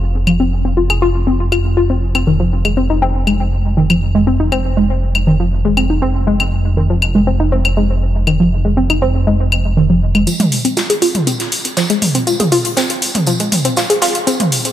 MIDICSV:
0, 0, Header, 1, 4, 480
1, 0, Start_track
1, 0, Key_signature, -4, "minor"
1, 0, Tempo, 500000
1, 260, Time_signature, 4, 2, 24, 8
1, 14134, End_track
2, 0, Start_track
2, 0, Title_t, "Synth arpeggio sound"
2, 0, Program_c, 0, 84
2, 259, Note_on_c, 0, 53, 78
2, 309, Note_off_c, 0, 53, 0
2, 383, Note_on_c, 0, 60, 71
2, 430, Note_off_c, 0, 60, 0
2, 624, Note_on_c, 0, 60, 71
2, 701, Note_off_c, 0, 60, 0
2, 740, Note_on_c, 0, 65, 75
2, 821, Note_off_c, 0, 65, 0
2, 863, Note_on_c, 0, 68, 76
2, 940, Note_off_c, 0, 68, 0
2, 980, Note_on_c, 0, 65, 102
2, 1029, Note_off_c, 0, 65, 0
2, 1219, Note_on_c, 0, 60, 78
2, 1301, Note_off_c, 0, 60, 0
2, 1459, Note_on_c, 0, 65, 72
2, 1509, Note_off_c, 0, 65, 0
2, 1699, Note_on_c, 0, 65, 81
2, 1781, Note_off_c, 0, 65, 0
2, 1823, Note_on_c, 0, 60, 72
2, 1900, Note_off_c, 0, 60, 0
2, 2063, Note_on_c, 0, 60, 75
2, 2140, Note_off_c, 0, 60, 0
2, 2180, Note_on_c, 0, 51, 80
2, 2229, Note_off_c, 0, 51, 0
2, 2303, Note_on_c, 0, 53, 74
2, 2349, Note_off_c, 0, 53, 0
2, 2543, Note_on_c, 0, 56, 74
2, 2620, Note_off_c, 0, 56, 0
2, 2660, Note_on_c, 0, 60, 79
2, 2741, Note_off_c, 0, 60, 0
2, 2783, Note_on_c, 0, 63, 73
2, 2860, Note_off_c, 0, 63, 0
2, 2900, Note_on_c, 0, 60, 97
2, 2949, Note_off_c, 0, 60, 0
2, 3139, Note_on_c, 0, 56, 75
2, 3221, Note_off_c, 0, 56, 0
2, 3620, Note_on_c, 0, 51, 81
2, 3669, Note_off_c, 0, 51, 0
2, 3744, Note_on_c, 0, 53, 67
2, 3790, Note_off_c, 0, 53, 0
2, 3984, Note_on_c, 0, 56, 75
2, 4060, Note_off_c, 0, 56, 0
2, 4100, Note_on_c, 0, 60, 81
2, 4181, Note_off_c, 0, 60, 0
2, 4224, Note_on_c, 0, 63, 72
2, 4300, Note_off_c, 0, 63, 0
2, 4340, Note_on_c, 0, 60, 96
2, 4389, Note_off_c, 0, 60, 0
2, 4580, Note_on_c, 0, 56, 74
2, 4661, Note_off_c, 0, 56, 0
2, 5060, Note_on_c, 0, 51, 79
2, 5109, Note_off_c, 0, 51, 0
2, 5183, Note_on_c, 0, 53, 73
2, 5229, Note_off_c, 0, 53, 0
2, 5423, Note_on_c, 0, 56, 73
2, 5500, Note_off_c, 0, 56, 0
2, 5540, Note_on_c, 0, 60, 79
2, 5621, Note_off_c, 0, 60, 0
2, 5663, Note_on_c, 0, 63, 67
2, 5740, Note_off_c, 0, 63, 0
2, 5779, Note_on_c, 0, 60, 96
2, 5828, Note_off_c, 0, 60, 0
2, 6020, Note_on_c, 0, 56, 84
2, 6101, Note_off_c, 0, 56, 0
2, 6500, Note_on_c, 0, 51, 78
2, 6549, Note_off_c, 0, 51, 0
2, 6623, Note_on_c, 0, 53, 76
2, 6670, Note_off_c, 0, 53, 0
2, 6863, Note_on_c, 0, 56, 72
2, 6940, Note_off_c, 0, 56, 0
2, 6980, Note_on_c, 0, 60, 80
2, 7061, Note_off_c, 0, 60, 0
2, 7103, Note_on_c, 0, 63, 73
2, 7180, Note_off_c, 0, 63, 0
2, 7220, Note_on_c, 0, 60, 99
2, 7269, Note_off_c, 0, 60, 0
2, 7460, Note_on_c, 0, 56, 83
2, 7541, Note_off_c, 0, 56, 0
2, 7940, Note_on_c, 0, 51, 77
2, 7989, Note_off_c, 0, 51, 0
2, 8063, Note_on_c, 0, 53, 72
2, 8110, Note_off_c, 0, 53, 0
2, 8303, Note_on_c, 0, 56, 75
2, 8380, Note_off_c, 0, 56, 0
2, 8420, Note_on_c, 0, 60, 80
2, 8501, Note_off_c, 0, 60, 0
2, 8543, Note_on_c, 0, 63, 77
2, 8620, Note_off_c, 0, 63, 0
2, 8659, Note_on_c, 0, 60, 105
2, 8708, Note_off_c, 0, 60, 0
2, 8899, Note_on_c, 0, 56, 82
2, 8981, Note_off_c, 0, 56, 0
2, 9379, Note_on_c, 0, 51, 81
2, 9428, Note_off_c, 0, 51, 0
2, 9502, Note_on_c, 0, 53, 69
2, 9549, Note_off_c, 0, 53, 0
2, 9743, Note_on_c, 0, 56, 76
2, 9820, Note_off_c, 0, 56, 0
2, 9859, Note_on_c, 0, 53, 82
2, 9908, Note_off_c, 0, 53, 0
2, 9982, Note_on_c, 0, 56, 76
2, 10029, Note_off_c, 0, 56, 0
2, 10222, Note_on_c, 0, 60, 73
2, 10300, Note_off_c, 0, 60, 0
2, 10339, Note_on_c, 0, 65, 83
2, 10421, Note_off_c, 0, 65, 0
2, 10462, Note_on_c, 0, 68, 80
2, 10540, Note_off_c, 0, 68, 0
2, 10579, Note_on_c, 0, 65, 101
2, 10628, Note_off_c, 0, 65, 0
2, 10819, Note_on_c, 0, 60, 76
2, 10901, Note_off_c, 0, 60, 0
2, 11299, Note_on_c, 0, 53, 83
2, 11349, Note_off_c, 0, 53, 0
2, 11422, Note_on_c, 0, 56, 71
2, 11469, Note_off_c, 0, 56, 0
2, 11663, Note_on_c, 0, 60, 76
2, 11740, Note_off_c, 0, 60, 0
2, 11779, Note_on_c, 0, 65, 85
2, 11861, Note_off_c, 0, 65, 0
2, 11903, Note_on_c, 0, 68, 73
2, 11980, Note_off_c, 0, 68, 0
2, 12019, Note_on_c, 0, 65, 95
2, 12068, Note_off_c, 0, 65, 0
2, 12259, Note_on_c, 0, 60, 78
2, 12341, Note_off_c, 0, 60, 0
2, 12740, Note_on_c, 0, 53, 80
2, 12789, Note_off_c, 0, 53, 0
2, 12864, Note_on_c, 0, 56, 73
2, 12910, Note_off_c, 0, 56, 0
2, 13103, Note_on_c, 0, 60, 72
2, 13180, Note_off_c, 0, 60, 0
2, 13219, Note_on_c, 0, 65, 80
2, 13301, Note_off_c, 0, 65, 0
2, 13343, Note_on_c, 0, 68, 71
2, 13420, Note_off_c, 0, 68, 0
2, 13459, Note_on_c, 0, 65, 99
2, 13508, Note_off_c, 0, 65, 0
2, 13699, Note_on_c, 0, 60, 84
2, 13781, Note_off_c, 0, 60, 0
2, 14134, End_track
3, 0, Start_track
3, 0, Title_t, "Detuned saw bass"
3, 0, Program_c, 1, 39
3, 0, Note_on_c, 1, 29, 85
3, 2157, Note_off_c, 1, 29, 0
3, 2180, Note_on_c, 1, 29, 86
3, 9836, Note_off_c, 1, 29, 0
3, 14134, End_track
4, 0, Start_track
4, 0, Title_t, "Drums"
4, 260, Note_on_c, 9, 75, 46
4, 356, Note_off_c, 9, 75, 0
4, 864, Note_on_c, 9, 75, 51
4, 960, Note_off_c, 9, 75, 0
4, 1460, Note_on_c, 9, 75, 52
4, 1556, Note_off_c, 9, 75, 0
4, 2064, Note_on_c, 9, 75, 51
4, 2160, Note_off_c, 9, 75, 0
4, 2544, Note_on_c, 9, 75, 52
4, 2640, Note_off_c, 9, 75, 0
4, 3140, Note_on_c, 9, 75, 53
4, 3236, Note_off_c, 9, 75, 0
4, 3744, Note_on_c, 9, 75, 55
4, 3840, Note_off_c, 9, 75, 0
4, 4341, Note_on_c, 9, 75, 47
4, 4437, Note_off_c, 9, 75, 0
4, 4944, Note_on_c, 9, 75, 52
4, 5040, Note_off_c, 9, 75, 0
4, 5541, Note_on_c, 9, 75, 52
4, 5637, Note_off_c, 9, 75, 0
4, 6144, Note_on_c, 9, 75, 50
4, 6240, Note_off_c, 9, 75, 0
4, 6741, Note_on_c, 9, 75, 50
4, 6837, Note_off_c, 9, 75, 0
4, 7344, Note_on_c, 9, 75, 52
4, 7440, Note_off_c, 9, 75, 0
4, 7940, Note_on_c, 9, 75, 47
4, 8036, Note_off_c, 9, 75, 0
4, 8543, Note_on_c, 9, 75, 49
4, 8639, Note_off_c, 9, 75, 0
4, 9140, Note_on_c, 9, 75, 50
4, 9236, Note_off_c, 9, 75, 0
4, 9743, Note_on_c, 9, 75, 50
4, 9839, Note_off_c, 9, 75, 0
4, 9859, Note_on_c, 9, 42, 55
4, 9860, Note_on_c, 9, 54, 88
4, 9955, Note_off_c, 9, 42, 0
4, 9956, Note_off_c, 9, 54, 0
4, 9983, Note_on_c, 9, 42, 56
4, 9983, Note_on_c, 9, 45, 89
4, 10079, Note_off_c, 9, 42, 0
4, 10079, Note_off_c, 9, 45, 0
4, 10100, Note_on_c, 9, 46, 90
4, 10102, Note_on_c, 9, 54, 59
4, 10196, Note_off_c, 9, 46, 0
4, 10198, Note_off_c, 9, 54, 0
4, 10223, Note_on_c, 9, 42, 57
4, 10319, Note_off_c, 9, 42, 0
4, 10336, Note_on_c, 9, 54, 79
4, 10340, Note_on_c, 9, 42, 56
4, 10343, Note_on_c, 9, 38, 111
4, 10432, Note_off_c, 9, 54, 0
4, 10436, Note_off_c, 9, 42, 0
4, 10439, Note_off_c, 9, 38, 0
4, 10463, Note_on_c, 9, 42, 57
4, 10559, Note_off_c, 9, 42, 0
4, 10579, Note_on_c, 9, 46, 101
4, 10579, Note_on_c, 9, 54, 59
4, 10675, Note_off_c, 9, 46, 0
4, 10675, Note_off_c, 9, 54, 0
4, 10703, Note_on_c, 9, 42, 53
4, 10703, Note_on_c, 9, 45, 83
4, 10799, Note_off_c, 9, 42, 0
4, 10799, Note_off_c, 9, 45, 0
4, 10819, Note_on_c, 9, 54, 79
4, 10820, Note_on_c, 9, 42, 58
4, 10915, Note_off_c, 9, 54, 0
4, 10916, Note_off_c, 9, 42, 0
4, 10943, Note_on_c, 9, 42, 53
4, 10947, Note_on_c, 9, 38, 37
4, 11039, Note_off_c, 9, 42, 0
4, 11043, Note_off_c, 9, 38, 0
4, 11058, Note_on_c, 9, 54, 67
4, 11060, Note_on_c, 9, 46, 101
4, 11154, Note_off_c, 9, 54, 0
4, 11156, Note_off_c, 9, 46, 0
4, 11183, Note_on_c, 9, 42, 59
4, 11279, Note_off_c, 9, 42, 0
4, 11297, Note_on_c, 9, 54, 83
4, 11298, Note_on_c, 9, 38, 109
4, 11300, Note_on_c, 9, 42, 56
4, 11393, Note_off_c, 9, 54, 0
4, 11394, Note_off_c, 9, 38, 0
4, 11396, Note_off_c, 9, 42, 0
4, 11423, Note_on_c, 9, 42, 55
4, 11519, Note_off_c, 9, 42, 0
4, 11539, Note_on_c, 9, 45, 82
4, 11539, Note_on_c, 9, 46, 106
4, 11543, Note_on_c, 9, 54, 62
4, 11635, Note_off_c, 9, 45, 0
4, 11635, Note_off_c, 9, 46, 0
4, 11639, Note_off_c, 9, 54, 0
4, 11663, Note_on_c, 9, 42, 60
4, 11759, Note_off_c, 9, 42, 0
4, 11779, Note_on_c, 9, 42, 52
4, 11783, Note_on_c, 9, 54, 84
4, 11875, Note_off_c, 9, 42, 0
4, 11879, Note_off_c, 9, 54, 0
4, 11903, Note_on_c, 9, 42, 57
4, 11903, Note_on_c, 9, 45, 91
4, 11999, Note_off_c, 9, 42, 0
4, 11999, Note_off_c, 9, 45, 0
4, 12017, Note_on_c, 9, 54, 66
4, 12020, Note_on_c, 9, 46, 97
4, 12113, Note_off_c, 9, 54, 0
4, 12116, Note_off_c, 9, 46, 0
4, 12143, Note_on_c, 9, 42, 57
4, 12146, Note_off_c, 9, 42, 0
4, 12146, Note_on_c, 9, 42, 45
4, 12242, Note_off_c, 9, 42, 0
4, 12256, Note_on_c, 9, 38, 95
4, 12260, Note_on_c, 9, 42, 55
4, 12260, Note_on_c, 9, 54, 75
4, 12352, Note_off_c, 9, 38, 0
4, 12356, Note_off_c, 9, 42, 0
4, 12356, Note_off_c, 9, 54, 0
4, 12383, Note_on_c, 9, 42, 56
4, 12479, Note_off_c, 9, 42, 0
4, 12500, Note_on_c, 9, 46, 101
4, 12501, Note_on_c, 9, 54, 63
4, 12596, Note_off_c, 9, 46, 0
4, 12597, Note_off_c, 9, 54, 0
4, 12624, Note_on_c, 9, 42, 54
4, 12624, Note_on_c, 9, 45, 85
4, 12720, Note_off_c, 9, 42, 0
4, 12720, Note_off_c, 9, 45, 0
4, 12734, Note_on_c, 9, 54, 93
4, 12740, Note_on_c, 9, 42, 57
4, 12830, Note_off_c, 9, 54, 0
4, 12836, Note_off_c, 9, 42, 0
4, 12864, Note_on_c, 9, 42, 54
4, 12960, Note_off_c, 9, 42, 0
4, 12979, Note_on_c, 9, 54, 73
4, 12980, Note_on_c, 9, 45, 78
4, 12980, Note_on_c, 9, 46, 109
4, 13075, Note_off_c, 9, 54, 0
4, 13076, Note_off_c, 9, 45, 0
4, 13076, Note_off_c, 9, 46, 0
4, 13104, Note_on_c, 9, 42, 57
4, 13200, Note_off_c, 9, 42, 0
4, 13215, Note_on_c, 9, 54, 83
4, 13220, Note_on_c, 9, 42, 55
4, 13222, Note_on_c, 9, 38, 101
4, 13311, Note_off_c, 9, 54, 0
4, 13316, Note_off_c, 9, 42, 0
4, 13318, Note_off_c, 9, 38, 0
4, 13344, Note_on_c, 9, 42, 54
4, 13348, Note_off_c, 9, 42, 0
4, 13348, Note_on_c, 9, 42, 44
4, 13444, Note_off_c, 9, 42, 0
4, 13457, Note_on_c, 9, 38, 104
4, 13457, Note_on_c, 9, 54, 70
4, 13460, Note_on_c, 9, 46, 110
4, 13553, Note_off_c, 9, 38, 0
4, 13553, Note_off_c, 9, 54, 0
4, 13556, Note_off_c, 9, 46, 0
4, 13584, Note_on_c, 9, 42, 57
4, 13680, Note_off_c, 9, 42, 0
4, 13701, Note_on_c, 9, 42, 54
4, 13702, Note_on_c, 9, 54, 97
4, 13797, Note_off_c, 9, 42, 0
4, 13798, Note_off_c, 9, 54, 0
4, 13824, Note_on_c, 9, 42, 54
4, 13824, Note_on_c, 9, 45, 87
4, 13920, Note_off_c, 9, 42, 0
4, 13920, Note_off_c, 9, 45, 0
4, 13939, Note_on_c, 9, 54, 64
4, 13941, Note_on_c, 9, 46, 102
4, 14035, Note_off_c, 9, 54, 0
4, 14037, Note_off_c, 9, 46, 0
4, 14064, Note_on_c, 9, 42, 54
4, 14134, Note_off_c, 9, 42, 0
4, 14134, End_track
0, 0, End_of_file